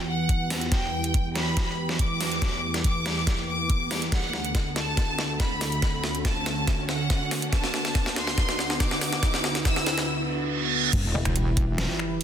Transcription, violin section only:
0.08 0.64 F#5 medium
0.72 1.27 G5 loud
1.35 1.91 B5 loud
1.99 2.76 D6 loud
2.84 3.40 D6 loud
3.48 4.04 D6 medium
4.12 4.68 F#5 loud
4.76 5.32 A5 loud
5.40 6.17 B5 loud
6.25 6.81 A5 medium
6.89 7.44 F#5 loud
7.53 8.08 A5 loud
8.16 8.72 C6 loud
8.80 9.57 D6 loud
9.65 10.08 E6 loud

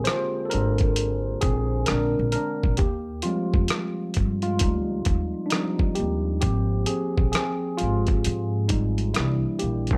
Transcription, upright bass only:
0.54 1.34 G#1 medium
1.44 1.84 A#1 medium
1.91 2.15 A#1 medium
2.19 2.33 A#1 medium
2.65 2.79 A#1 medium
2.80 3.20 D#2 medium
3.55 3.69 F2 medium
4.18 4.57 G2 medium
4.63 5.02 D2 medium
5.08 5.32 D#2 medium
6.00 6.39 D#2 medium
6.44 6.84 G#1 medium
7.19 7.33 A#1 medium
7.82 8.21 G#1 medium
8.26 8.66 G#2 loud
8.71 9.11 G#1 medium
9.18 9.42 C2 medium
9.63 9.92 A#1 medium
9.92 9.98 C2 medium

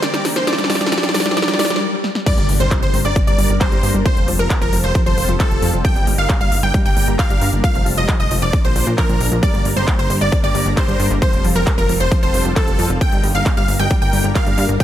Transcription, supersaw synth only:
0.03 0.24 D5 loud
0.36 0.46 C5 medium
0.47 0.68 D5 loud
0.70 0.90 D5 loud
0.92 1.13 D5 loud
1.14 1.35 D5 loud
1.37 1.58 D5 loud
1.59 1.80 D5 loud
2.27 2.48 D5 loud
2.60 2.75 C5 medium
2.82 2.97 C5 medium
3.05 3.19 D5 medium
3.27 3.49 D5 loud
3.61 3.90 C5 medium
4.06 4.27 C5 loud
4.39 4.54 A#4 medium
4.62 4.76 A#4 medium
4.84 4.99 C5 medium
5.06 5.28 C5 loud
5.40 5.69 A4 medium
5.85 6.06 G5 loud
6.18 6.33 F5 medium
6.41 6.55 F5 medium
6.63 6.78 G5 medium
6.85 7.07 G5 loud
7.19 7.48 F5 medium
7.64 7.86 F5 loud
7.97 8.12 D#5 medium
8.20 8.34 D#5 medium
8.42 8.57 D5 medium
8.64 8.86 C5 loud
8.98 9.27 A#4 medium
9.43 9.65 D5 loud
9.76 9.91 C5 medium
9.99 10.13 C5 medium
10.21 10.36 D5 medium
10.44 10.65 D5 loud
10.77 11.06 C5 medium
11.22 11.44 C5 loud
11.56 11.70 A#4 medium
11.78 11.92 A#4 medium
12.00 12.15 C5 medium
12.23 12.44 C5 loud
12.56 12.85 A4 loud
13.01 13.23 G5 loud
13.35 13.49 F5 medium
13.57 13.72 F5 medium
13.80 13.94 G5 medium
14.02 14.24 G5 loud
14.35 14.64 F5 loud
14.80 14.84 G5 loud

